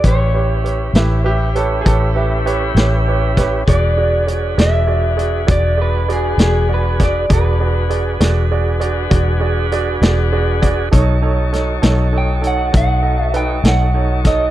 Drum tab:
HH |x-xx-xx-xx-x|x-xx-xx-xx-x|x-xx-xx-xx-x|x-xx-xx-xx-x|
SD |---o-----o-o|---o-----o-o|---o-----o--|--oo-----o-o|
BD |o-----o----o|o-----o----o|o-----o----o|o-----o----o|